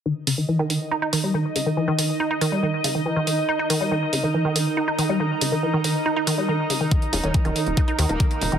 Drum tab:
HH |--o---o---o---o-|--o---o---o---o-|--o---o---o---o-|--o---o---o---o-|
BD |----------------|----------------|----------------|----------------|

HH |xxoxxxoxxxoxxxox|
BD |o---o---o---o---|